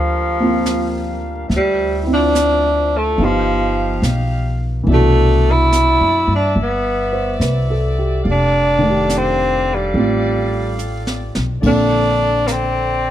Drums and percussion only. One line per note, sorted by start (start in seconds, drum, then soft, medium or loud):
0.66 snare soft
0.66 hi-hat pedal soft
1.51 brush sweep soft
1.51 snare soft
2.35 snare soft
2.35 hi-hat pedal soft
3.19 brush sweep soft
4.03 snare soft
4.03 hi-hat pedal soft
4.87 brush sweep soft
5.73 snare soft
5.73 hi-hat pedal soft
6.57 brush sweep soft
7.41 snare soft
7.41 hi-hat pedal soft
8.25 brush sweep soft
9.10 snare soft
9.10 hi-hat pedal soft
9.94 brush sweep soft
10.79 hi-hat pedal soft
11.07 snare soft
11.35 snare soft
11.63 brush sweep soft
11.63 kick soft
11.63 ride soft
12.48 snare soft
12.48 hi-hat pedal soft